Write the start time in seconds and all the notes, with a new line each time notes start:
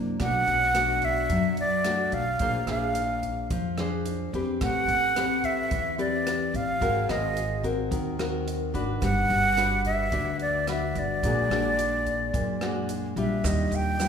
Already playing: F#2 C3 A#3 D4 E4
0.20 B1 B2 A3 D4 F#4 F#5, kick, cross-stick, closed hi-hat
0.47 B1, closed hi-hat
0.75 A3 D4 F#4, cross-stick, closed hi-hat
1.02 E5, kick, closed hi-hat
1.30 F#2 F#3, kick, closed hi-hat
1.57 D5, closed hi-hat
1.84 A3 D4 F#4, cross-stick, closed hi-hat
2.12 B1 F5, kick, closed hi-hat
2.39 A#1 A#3 D4 G#4 C5, kick, closed hi-hat
2.67 A#1 D4 G#4 C5 F5, cross-stick, closed hi-hat
2.95 closed hi-hat
3.23 kick, closed hi-hat
3.51 F2 F3, kick, closed hi-hat
3.78 D4 G#4 C5, cross-stick, closed hi-hat
4.06 closed hi-hat
4.33 E2 C4 G4 B4, kick, closed hi-hat
4.61 A1 A3 F#5, kick, cross-stick, closed hi-hat
4.88 A1, closed hi-hat
5.16 C4 G4 B4, cross-stick, closed hi-hat
5.44 E5, kick, closed hi-hat
5.71 E2 E3, kick, closed hi-hat
5.98 C4 G4 B4 D5, closed hi-hat
6.27 cross-stick, closed hi-hat
6.54 A1 F5, kick, closed hi-hat
6.81 G#1 G#3 C4 F#4 A#4, kick, closed hi-hat
7.09 G#1 D#5, cross-stick, closed hi-hat
7.37 closed hi-hat
7.63 C4 F#4 A#4, kick, closed hi-hat
7.91 D#2 D#3, kick, closed hi-hat
8.19 C4 F#4 A#4, cross-stick, closed hi-hat
8.48 closed hi-hat
8.74 G#1 D4 F#4 B4, kick, closed hi-hat
9.02 G1 G3 F#5, kick, cross-stick, closed hi-hat
9.30 G1, closed hi-hat
9.57 D4 F#4 B4, cross-stick, closed hi-hat
9.85 E5, kick, closed hi-hat
10.12 D2 D3 D4 F#4 B4, kick, closed hi-hat
10.39 D5, closed hi-hat
10.67 D4 F#4 B4 E5, cross-stick, closed hi-hat
10.95 G1 D5, kick, closed hi-hat
11.23 A#1 A#2 G#3 D4 F#4, kick, closed hi-hat
11.50 A#1 G#3 D4 F#4, cross-stick, closed hi-hat
11.79 closed hi-hat
12.06 kick, closed hi-hat
12.33 F#2 A#2, kick, closed hi-hat
12.61 G#3 D4 F#4, cross-stick, closed hi-hat
12.89 closed hi-hat
13.16 A#1 G3 D4 F4 E5, kick, closed hi-hat
13.44 D#2 D#3 D#5, kick, cross-stick, closed hi-hat, shaker
13.71 D#2, closed hi-hat, shaker
13.75 G5
14.00 G3 D4 F4, cross-stick, closed hi-hat, shaker